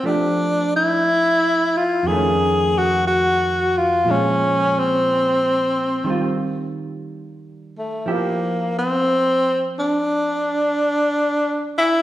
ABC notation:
X:1
M:4/4
L:1/8
Q:"Swing" 1/4=60
K:F
V:1 name="Tenor saxophone"
D E2 F _A _G G F | _D C4 z2 A, | B, C2 D4 E |]
V:2 name="Hollow-body jazz guitar" clef=bass
[F,A,G]4 [F,,_E,A,^C]4 | [B,,F,_A,]4 [_E,G,F]4 | [F,EG]8 |]